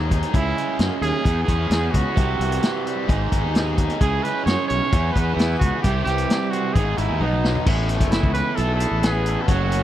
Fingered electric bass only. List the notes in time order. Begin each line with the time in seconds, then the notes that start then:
Already playing: D#2
0.34 C#2
0.79 F#2
1.01 D#2
1.25 E2
1.48 E2
1.70 E2
1.94 C#2
2.17 C2
2.39 C2
3.08 G#1
3.32 G#1
3.44 D#2
4.01 C#2
4.46 F#2
4.71 B1
4.93 E2
5.15 E2
5.36 E2
5.61 C#2
5.84 C2
6.06 C2
6.75 G#1
6.98 G#1
7.10 D#2
7.20 B1
7.66 A1
8.01 F#1
8.23 C#2
8.58 B1
8.91 A1
9.48 F#1